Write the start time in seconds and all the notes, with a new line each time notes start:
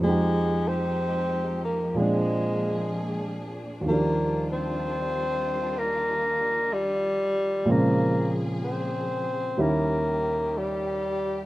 0.00 F2 F3 G#3
0.04 F3 G#3 D#4 G4
0.10 G4
0.68 C4
1.65 A#3
1.94 A#2 F3 G#3 A#3 D4 G#4
1.98 C4 D4
3.81 D#2 D#3 G3 F4
3.87 F3 G3 A#3
3.92 D4
4.53 C4
5.78 A#3
6.73 G3
7.65 A#2 F3 G#3 A#3 C4 G#4
7.69 C#3 A#3
8.64 C4
9.57 D#2 D#3 G3 A#3 C#4 E4 G4
10.58 G3